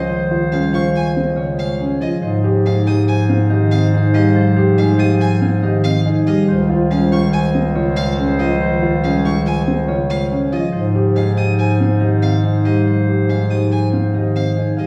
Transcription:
0.00 2.10 C#2 medium
0.00 0.16 F3 medium
0.00 0.16 F4 medium
0.00 0.51 G#4 medium
0.00 1.97 C5 medium
0.00 1.36 C#5 medium
0.00 1.15 D#5 medium
0.00 0.73 F5 medium
0.09 0.38 D#3 medium
0.09 2.21 C5 medium
0.31 0.59 F4 medium
0.52 0.80 G3 medium
0.52 0.80 C#4 medium
0.52 1.79 G#4 medium
0.52 0.68 F5 medium
0.73 1.01 D#3 medium
0.73 1.01 F4 medium
0.73 2.24 F5 medium
0.73 0.90 C#6 medium
0.95 1.11 G#5 medium
1.16 1.44 C4 medium
1.16 2.00 D#5 medium
1.36 1.65 C#3 medium
1.36 2.24 C#5 medium
1.58 1.86 G#3 medium
1.58 1.75 F5 medium
1.80 2.08 C#4 medium
1.80 2.65 G#4 medium
2.01 2.21 F3 medium
2.01 2.29 F4 medium
2.01 3.49 D#5 medium
2.01 2.17 D#5 medium
2.22 6.36 G#2 medium
2.22 2.50 F3 medium
2.22 4.34 C5 medium
2.22 6.23 C5 medium
2.44 2.72 G4 medium
2.65 2.93 G#3 medium
2.65 2.93 D#4 medium
2.65 3.92 G#4 medium
2.65 2.82 F5 medium
2.86 3.14 F3 medium
2.86 3.14 G4 medium
2.86 4.97 G5 loud
2.86 3.03 D#6 medium
3.08 3.24 G#5 medium
3.29 3.57 C4 medium
3.29 4.12 F5 medium
3.50 3.78 D#3 loud
3.50 3.78 G4 medium
3.50 5.61 D#5 medium
3.71 3.99 C4 medium
3.71 3.87 F5 medium
3.93 4.20 D#4 medium
3.93 4.76 G#4 medium
4.13 4.42 G3 medium
4.13 4.42 G4 medium
4.13 4.30 D#5 medium
4.13 5.40 F5 medium
4.35 4.63 F3 loud
4.35 6.46 C5 medium
4.57 4.84 G4 loud
4.77 5.06 G#3 medium
4.77 5.06 D#4 medium
4.77 6.04 G#4 medium
4.77 4.94 F5 medium
4.98 5.27 F3 medium
4.98 5.27 G4 medium
4.98 6.49 G5 loud
4.98 5.15 D#6 medium
5.21 5.37 G#5 loud
5.41 5.69 C4 medium
5.41 6.26 F5 medium
5.62 5.91 D#3 loud
5.62 5.91 G4 medium
5.62 7.53 D#5 medium
5.84 6.12 C4 medium
5.84 6.00 F5 medium
6.05 6.33 D#4 medium
6.05 6.90 G#4 medium
6.27 6.55 G3 loud
6.27 6.55 G4 medium
6.27 6.43 D#5 medium
6.27 7.10 F5 loud
6.48 10.61 C#2 medium
6.48 6.76 D#3 medium
6.48 8.59 C5 medium
6.48 10.48 C5 medium
6.70 6.97 F4 loud
6.91 7.18 G3 medium
6.91 7.18 C#4 medium
6.91 8.17 G#4 medium
6.91 7.07 F5 medium
7.12 7.40 D#3 medium
7.12 7.40 F4 medium
7.12 9.23 F5 loud
7.12 7.28 C#6 medium
7.33 7.49 G#5 medium
7.54 7.82 C4 medium
7.54 8.38 D#5 medium
7.75 8.03 C#3 medium
7.75 8.04 F4 medium
7.75 9.87 C#5 medium
7.96 8.25 G#3 medium
7.96 8.13 F5 loud
8.19 8.46 C#4 medium
8.19 9.02 G#4 medium
8.39 8.67 F3 medium
8.39 8.67 F4 medium
8.39 9.66 D#5 medium
8.39 8.55 D#5 medium
8.61 8.88 D#3 medium
8.61 10.71 C5 medium
8.82 9.10 F4 medium
9.03 9.31 G3 medium
9.03 9.31 C#4 medium
9.03 10.30 G#4 medium
9.03 9.20 F5 medium
9.24 9.53 D#3 medium
9.24 9.52 F4 medium
9.24 10.75 F5 medium
9.24 9.41 C#6 medium
9.46 9.62 G#5 medium
9.67 9.95 C4 medium
9.67 10.51 D#5 medium
9.88 10.16 C#3 medium
9.88 10.16 F4 medium
9.88 10.75 C#5 medium
10.10 10.38 G#3 medium
10.10 10.26 F5 medium
10.31 10.59 C#4 medium
10.31 11.14 G#4 medium
10.52 10.72 F3 medium
10.52 10.80 F4 medium
10.52 11.98 D#5 medium
10.52 10.68 D#5 medium
10.72 14.86 G#2 medium
10.72 11.01 F3 medium
10.72 12.86 C5 medium
10.72 14.73 C5 medium
10.95 11.23 G4 medium
11.16 11.44 G#3 medium
11.16 11.44 D#4 medium
11.16 12.42 G#4 medium
11.16 11.32 F5 medium
11.37 11.65 F3 medium
11.37 11.65 G4 medium
11.37 13.50 G5 medium
11.37 11.53 D#6 medium
11.59 11.75 G#5 medium
11.79 12.08 C4 medium
11.79 12.64 F5 medium
12.00 12.29 D#3 medium
12.00 12.29 G4 medium
12.00 14.13 D#5 medium
12.22 12.50 C4 medium
12.22 12.38 F5 medium
12.43 12.72 D#4 medium
12.43 13.27 G#4 medium
12.65 12.93 G3 medium
12.65 12.93 G4 medium
12.65 12.81 D#5 medium
12.65 13.92 F5 medium
12.87 13.14 F3 medium
12.87 14.87 C5 medium
13.08 13.35 G4 medium
13.29 13.57 G#3 medium
13.29 13.57 D#4 medium
13.29 14.55 G#4 medium
13.29 13.45 F5 medium
13.50 13.78 F3 medium
13.50 13.78 G4 medium
13.50 14.87 G5 medium
13.50 13.66 D#6 medium
13.72 13.88 G#5 medium
13.93 14.21 C4 medium
13.93 14.76 F5 soft
14.14 14.42 D#3 medium
14.14 14.42 G4 soft
14.14 14.87 D#5 medium
14.35 14.63 C4 medium
14.35 14.52 F5 medium
14.56 14.85 D#4 medium
14.56 14.87 G#4 medium
14.77 14.87 G3 medium
14.77 14.87 G4 soft
14.77 14.87 D#5 medium
14.77 14.87 F5 medium

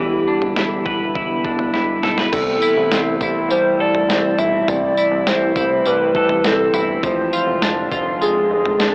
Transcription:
0.00 0.24 E1 medium
0.00 2.29 D3 medium
0.00 3.48 E3 medium
0.00 2.29 G3 medium
0.00 2.29 B3 medium
0.00 0.26 D4 medium
0.00 0.56 E4 medium
0.00 2.29 E4 medium
0.00 1.75 G4 loud
0.00 0.84 B4 medium
0.28 1.43 D4 medium
0.41 0.54 E1 medium
0.41 floor tom medium
0.56 0.82 E1 loud
0.56 1.15 E4 medium
0.56 snare loud
0.85 1.11 E1 medium
0.85 2.03 B4 medium
0.85 kick medium
0.85 floor tom medium
1.15 1.41 E1 medium
1.15 1.73 E4 medium
1.15 kick medium
1.44 1.70 E1 medium
1.44 2.39 D4 soft
1.44 kick medium
1.59 floor tom medium
1.73 2.00 E1 loud
1.73 2.62 E4 medium
1.73 snare soft
2.03 2.29 B1 medium
2.03 2.18 A4 medium
2.03 snare medium
2.18 2.38 B4 soft
2.18 snare medium
2.32 2.58 C2 loud
2.32 6.99 C3 medium
2.32 4.67 C3 medium
2.32 6.99 E3 medium
2.32 6.99 G3 medium
2.32 6.99 A3 medium
2.32 7.00 E4 medium
2.32 3.17 A4 loud
2.32 kick medium
2.32 floor tom medium
2.32 crash medium
2.32 tambourine medium
2.62 3.21 E4 medium
2.62 tambourine medium
2.77 2.90 C2 loud
2.91 3.17 C2 loud
2.91 4.10 C4 medium
2.91 snare loud
2.91 tambourine loud
3.21 3.47 C2 medium
3.21 4.39 E4 medium
3.21 kick medium
3.21 floor tom medium
3.21 tambourine medium
3.48 3.75 C2 loud
3.48 5.85 G3 medium
3.48 3.82 C5 loud
3.48 tambourine medium
3.78 4.05 C2 loud
3.78 6.15 A4 medium
3.78 4.40 D5 loud
3.95 floor tom medium
4.09 4.35 C2 loud
4.09 5.27 C4 medium
4.09 snare loud
4.09 tambourine loud
4.38 4.65 B1 medium
4.38 4.96 E4 medium
4.38 4.70 E5 loud
4.38 floor tom medium
4.38 tambourine medium
4.67 4.93 C2 loud
4.67 7.04 C3 medium
4.67 5.30 D5 loud
4.67 floor tom loud
4.67 tambourine medium
4.97 5.55 E4 medium
4.97 tambourine medium
5.11 5.25 C2 loud
5.26 5.52 C2 loud
5.26 6.45 C4 medium
5.26 5.86 C5 loud
5.26 snare loud
5.26 tambourine loud
5.56 5.82 C2 medium
5.56 6.73 E4 medium
5.56 kick medium
5.56 floor tom medium
5.56 tambourine medium
5.85 6.12 C2 loud
5.85 7.10 G3 medium
5.85 6.48 B4 loud
5.85 tambourine medium
6.15 6.41 C2 loud
6.15 7.10 A4 medium
6.15 kick medium
6.29 floor tom medium
6.44 6.70 C2 loud
6.44 7.62 C4 medium
6.44 6.90 A4 medium
6.44 snare loud
6.44 tambourine medium
6.73 7.00 G1 medium
6.73 7.09 E4 medium
6.73 floor tom medium
6.73 tambourine medium
7.02 7.29 F1 loud
7.02 8.95 D3 medium
7.02 8.95 F3 medium
7.02 8.95 G#3 medium
7.02 8.95 C4 medium
7.02 8.95 F4 medium
7.02 7.88 C5 medium
7.02 kick loud
7.02 floor tom loud
7.02 tambourine medium
7.33 7.90 F4 medium
7.33 tambourine medium
7.47 7.60 F1 loud
7.62 7.88 F1 loud
7.62 8.79 D4 medium
7.62 snare loud
7.62 tambourine loud
7.91 8.17 F1 loud
7.91 8.95 F4 medium
7.91 kick medium
7.91 floor tom medium
7.91 tambourine medium
8.21 8.47 F1 loud
8.21 8.95 G#3 medium
8.21 8.49 G#4 medium
8.21 tambourine medium
8.50 8.76 F1 loud
8.50 8.95 G#4 loud
8.65 floor tom medium
8.78 8.95 F1 loud
8.78 8.95 D4 medium
8.78 snare loud
8.78 tambourine medium

